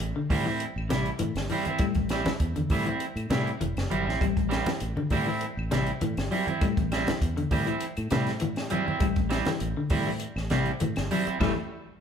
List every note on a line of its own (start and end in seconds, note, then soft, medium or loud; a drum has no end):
0.00 0.12 A1 medium
0.00 0.11 E3 medium
0.00 closed hi-hat medium
0.16 0.42 D3 medium
0.30 0.65 A2 medium
0.30 0.46 G3 medium
0.30 0.46 C4 medium
0.30 0.45 E4 medium
0.30 kick medium
0.30 open hi-hat medium
0.30 high conga medium
0.30 claves medium
0.46 0.72 E3 medium
0.46 0.65 C4 soft
0.46 0.64 E4 soft
0.60 closed hi-hat medium
0.76 1.10 A1 medium
0.76 claves medium
0.89 1.16 C3 medium
0.89 1.09 G3 medium
0.89 1.09 E4 medium
0.89 muted clean electric guitar stroke medium
0.89 snare medium
0.89 closed hi-hat soft
0.89 high conga medium
1.06 closed hi-hat soft
1.19 1.32 A2 medium
1.19 1.46 E3 medium
1.19 closed hi-hat medium
1.19 high conga medium
1.35 1.47 G1 medium
1.35 snare medium
1.35 closed hi-hat soft
1.35 claves medium
1.49 1.76 E3 medium
1.49 1.66 G3 medium
1.49 1.67 C4 medium
1.49 1.65 E4 medium
1.49 open hi-hat medium
1.49 high conga medium
1.65 1.84 C4 soft
1.65 1.84 E4 soft
1.65 muted fingered electric bass stroke soft
1.65 closed hi-hat soft
1.65 high conga medium
1.79 1.92 A2 medium
1.79 2.06 G3 medium
1.79 kick medium
1.79 closed hi-hat medium
1.79 claves medium
1.95 2.30 A1 medium
1.95 kick medium
1.95 closed hi-hat soft
1.95 high conga medium
2.09 2.29 G3 medium
2.09 2.30 C4 medium
2.09 2.30 E4 medium
2.09 snare medium
2.09 closed hi-hat soft
2.09 claves medium
2.25 2.52 E3 medium
2.25 snare medium
2.25 closed hi-hat soft
2.25 high conga medium
2.40 2.63 E2 medium
2.40 kick medium
2.40 closed hi-hat medium
2.56 2.82 D3 medium
2.56 closed hi-hat soft
2.56 high conga medium
2.70 2.93 A2 medium
2.70 2.87 G3 medium
2.70 2.87 C4 medium
2.70 2.86 E4 medium
2.70 kick medium
2.70 open hi-hat medium
2.70 high conga medium
2.70 claves medium
2.86 3.12 E3 medium
2.86 3.05 C4 soft
2.86 3.04 E4 soft
2.86 closed hi-hat soft
3.00 closed hi-hat medium
3.16 3.27 A2 medium
3.16 closed hi-hat soft
3.16 claves medium
3.30 3.53 A2 medium
3.30 3.57 C3 medium
3.30 3.49 G3 medium
3.30 3.49 C4 medium
3.30 3.50 E4 medium
3.30 snare medium
3.30 closed hi-hat soft
3.30 high conga medium
3.47 closed hi-hat soft
3.61 3.75 E1 medium
3.61 3.87 E3 medium
3.61 closed hi-hat medium
3.61 high conga medium
3.77 3.90 F#1 medium
3.77 snare medium
3.77 closed hi-hat soft
3.77 claves medium
3.90 4.06 G1 medium
3.90 4.17 F#3 medium
3.90 4.06 G3 medium
3.90 4.06 C4 medium
3.90 4.05 E4 medium
3.90 closed hi-hat soft
3.90 high conga medium
4.06 4.20 A1 medium
4.06 4.24 C4 soft
4.06 4.24 E4 soft
4.06 snare soft
4.21 4.33 A1 medium
4.21 4.47 G3 medium
4.21 kick medium
4.21 closed hi-hat medium
4.21 claves medium
4.37 4.60 A1 medium
4.37 kick medium
4.37 closed hi-hat soft
4.49 4.69 G3 medium
4.49 4.69 C4 medium
4.49 4.69 E4 medium
4.49 snare medium
4.49 closed hi-hat soft
4.49 claves medium
4.66 4.93 E3 medium
4.66 snare medium
4.66 closed hi-hat soft
4.66 high conga medium
4.80 4.93 A1 medium
4.80 closed hi-hat medium
4.97 5.23 D3 medium
4.97 high conga medium
5.10 5.46 A2 medium
5.10 5.27 G3 medium
5.10 5.27 C4 medium
5.10 5.27 E4 medium
5.10 kick medium
5.10 open hi-hat medium
5.10 high conga medium
5.10 claves medium
5.27 5.53 E3 medium
5.27 5.45 C4 soft
5.27 5.45 E4 soft
5.41 closed hi-hat medium
5.57 5.91 A1 medium
5.57 claves medium
5.71 5.97 C3 medium
5.71 5.90 G3 soft
5.71 5.90 C4 medium
5.71 5.90 E4 medium
5.71 snare medium
5.71 closed hi-hat soft
5.71 high conga medium
5.87 closed hi-hat soft
6.01 6.14 A2 medium
6.01 6.28 E3 medium
6.01 closed hi-hat medium
6.01 high conga medium
6.17 6.28 G1 medium
6.17 snare medium
6.17 closed hi-hat soft
6.17 claves medium
6.31 6.58 F#3 medium
6.31 6.47 G3 medium
6.31 6.48 C4 medium
6.31 6.46 E4 medium
6.31 open hi-hat soft
6.47 6.65 C4 soft
6.47 6.65 E4 soft
6.47 muted fingered electric bass stroke soft
6.47 closed hi-hat soft
6.47 high conga medium
6.61 6.74 A2 medium
6.61 6.88 G3 medium
6.61 kick medium
6.61 closed hi-hat medium
6.61 claves medium
6.77 7.11 A1 medium
6.77 kick medium
6.77 closed hi-hat soft
6.77 high conga medium
6.92 7.10 G3 medium
6.92 7.11 C4 medium
6.92 7.11 E4 medium
6.92 snare medium
6.92 closed hi-hat soft
6.92 claves medium
7.07 7.33 E3 medium
7.07 snare medium
7.07 closed hi-hat soft
7.07 high conga medium
7.21 7.44 E2 medium
7.21 kick medium
7.21 closed hi-hat medium
7.37 7.63 D3 medium
7.37 closed hi-hat soft
7.51 7.74 A2 medium
7.51 7.67 G3 medium
7.51 7.67 C4 medium
7.51 7.66 E4 medium
7.51 kick medium
7.51 open hi-hat medium
7.51 high conga medium
7.51 claves medium
7.66 7.93 E3 medium
7.66 7.85 C4 soft
7.66 7.84 E4 soft
7.66 closed hi-hat soft
7.80 closed hi-hat medium
7.97 8.08 A2 medium
7.97 closed hi-hat soft
7.97 claves medium
8.10 8.80 A2 medium
8.10 8.38 C3 medium
8.10 8.30 G3 medium
8.10 8.30 C4 medium
8.10 8.30 E4 medium
8.10 snare medium
8.10 closed hi-hat soft
8.10 high conga medium
8.26 snare soft
8.26 closed hi-hat soft
8.40 8.67 E3 medium
8.40 closed hi-hat medium
8.40 high conga medium
8.56 snare medium
8.56 closed hi-hat soft
8.56 claves medium
8.70 8.97 F#3 medium
8.70 8.87 G3 medium
8.70 8.86 C4 medium
8.70 8.85 E4 medium
8.70 closed hi-hat soft
8.70 high conga medium
8.86 9.05 C4 soft
8.86 9.04 E4 soft
8.86 high conga medium
9.00 9.13 A1 medium
9.00 9.27 G3 medium
9.00 kick medium
9.00 closed hi-hat medium
9.00 claves medium
9.16 9.40 A1 medium
9.16 kick medium
9.16 closed hi-hat soft
9.30 9.49 G3 medium
9.30 9.49 C4 medium
9.30 9.50 E4 medium
9.30 snare medium
9.30 closed hi-hat soft
9.30 claves medium
9.45 9.73 E3 medium
9.45 snare medium
9.45 closed hi-hat soft
9.45 high conga medium
9.60 9.73 A1 medium
9.60 closed hi-hat medium
9.77 10.03 D3 medium
9.90 10.26 A2 medium
9.90 10.09 G3 medium
9.90 10.10 C4 medium
9.90 10.10 E4 medium
9.90 kick medium
9.90 open hi-hat medium
9.90 high conga medium
9.90 claves medium
10.07 10.33 E3 medium
10.20 closed hi-hat medium
10.36 10.70 A1 medium
10.36 snare soft
10.36 claves medium
10.50 10.78 C3 medium
10.50 10.69 G3 medium
10.50 10.70 C4 medium
10.50 10.70 E4 medium
10.50 snare medium
10.50 closed hi-hat soft
10.50 high conga medium
10.65 closed hi-hat soft
10.80 10.93 A2 medium
10.80 11.07 E3 medium
10.80 closed hi-hat medium
10.80 high conga medium
10.96 11.08 G1 medium
10.96 snare medium
10.96 closed hi-hat soft
10.96 claves medium
11.11 11.38 F#3 medium
11.11 11.27 G3 medium
11.11 11.26 C4 medium
11.11 11.25 E4 medium
11.11 open hi-hat medium
11.11 high conga medium
11.26 11.39 C4 soft
11.26 11.39 E4 medium
11.26 muted fingered electric bass stroke soft
11.26 closed hi-hat soft
11.40 11.52 A1 loud
11.40 11.51 E3 medium
11.40 11.51 G3 medium
11.40 11.51 A3 medium
11.40 11.51 C4 medium
11.40 11.51 E4 medium
11.40 kick medium
11.40 snare medium
11.40 low conga loud
11.40 claves medium